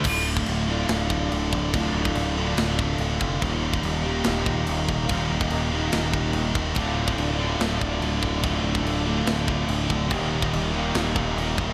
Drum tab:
CC |x---x---x---x---|x---x---x---x---|x---x---x---x---|x---x---x---x---|
SD |--------o-------|--------o-------|--------o-------|--------o-------|
BD |o--o------o---o-|o--o------o---o-|o--o------o---o-|o--o------o---o-|

CC |x---x---x---x---|x---x---x---x---|x---x---x---x---|
SD |--------o-------|--------o-------|--------o-------|
BD |o--o------o---o-|o--o------o---o-|o--o------o---o-|